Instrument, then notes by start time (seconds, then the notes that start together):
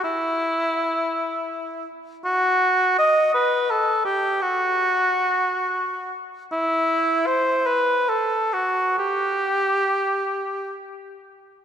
cor anglais
0.04 E4
2.25 F#4
2.99 D#5
3.35 B4
3.71 A4
4.05 G4
4.42 F#4
6.52 E4
7.26 C5
7.66 B4
8.09 A4
8.54 F#4
8.98 G4